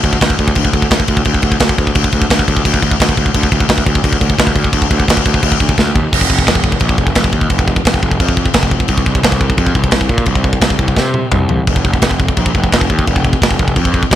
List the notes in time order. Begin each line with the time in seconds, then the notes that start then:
0.03 D2, kick, crash
0.13 kick
0.21 D2, kick, snare, crash
0.30 kick
0.39 D2, kick, crash
0.48 kick
0.55 D2, kick, crash
0.65 kick
0.73 D2, kick, crash
0.82 kick
0.91 D2, kick, snare, crash
1.00 kick
1.08 D2, kick, crash
1.17 kick
1.25 D2, kick, crash
1.34 kick
1.42 D2, kick, crash
1.52 kick
1.60 D2, kick, snare, crash
1.69 kick
1.78 D2, kick, crash
1.87 kick
1.95 D2, kick, crash
2.04 kick
2.12 D2, kick, crash
2.22 kick
2.30 D2, kick, snare, crash
2.39 kick
2.48 D2, kick, crash
2.57 kick
2.65 D2, kick, crash
2.74 kick
2.82 D2, kick, crash
2.91 kick
3.00 D2, kick, snare, crash
3.09 kick
3.17 D2, kick, crash
3.26 kick
3.35 D2, kick, crash
3.43 kick
3.52 D2, kick, crash
3.60 kick
3.69 D2, kick, snare, crash
3.78 kick
3.86 D2, kick, crash
3.95 kick
4.04 D2, kick, crash
4.13 kick
4.21 D2, kick, crash
4.30 kick
4.38 D2, kick, snare, crash
4.47 kick
4.55 D2, kick, crash
4.64 kick
4.73 D2, kick, crash
4.82 kick
4.91 D2, kick, crash
5.00 kick
5.08 D2, kick, snare, crash
5.17 kick
5.26 D2, kick, crash
5.34 kick
5.43 D2, kick, crash
5.52 kick
5.60 D2, kick, crash
5.69 kick
5.78 D2, kick, snare
5.95 D#2, kick
6.12 F1, kick, crash
6.21 kick
6.30 F1, kick
6.39 kick
6.47 F1, kick, snare, crash
6.55 kick
6.64 kick
6.72 kick
6.80 A#1, kick, crash
6.89 kick
6.98 F1, kick
7.07 kick
7.15 F1, kick, snare, crash
7.24 kick
7.33 D#2, kick
7.41 kick
7.50 F1, kick, crash
7.59 kick
7.68 kick
7.76 kick
7.85 F1, kick, snare, crash
7.94 kick
8.03 F1, kick
8.11 kick
8.20 F2, kick, crash
8.29 kick
8.37 kick
8.46 kick
8.53 F1, kick, snare, crash
8.63 kick
8.71 kick
8.80 kick
8.88 C2, kick, crash
8.98 kick
9.06 C2, kick
9.15 kick
9.23 C2, kick, snare, crash
9.32 kick
9.41 kick
9.50 kick
9.57 F2, kick, crash
9.66 kick
9.75 C2, kick
9.84 kick
9.91 C2, kick, snare, crash
10.01 kick
10.09 A#2, kick
10.18 kick
10.26 C2, kick, crash
10.35 kick
10.44 kick
10.53 kick
10.61 C2, kick, snare, crash
10.70 kick
10.79 C2, kick
10.88 kick
10.96 C3, kick, snare
11.14 high tom
11.32 C2, kick, mid tom
11.49 floor tom
11.67 F1, kick, crash
11.76 kick
11.85 F1, kick
11.94 kick
12.02 F1, kick, snare, crash
12.11 kick
12.20 kick
12.28 kick
12.37 A#1, kick, crash
12.46 kick
12.54 F1, kick
12.64 kick
12.72 F1, kick, snare, crash
12.81 kick
12.90 D#2, kick
12.99 kick
13.07 F1, kick, crash
13.16 kick
13.25 kick
13.33 kick
13.42 F1, kick, snare, crash
13.51 kick
13.59 F1, kick
13.68 kick
13.76 F2, kick, crash
13.85 kick
13.94 kick
14.03 kick
14.11 D2, kick, crash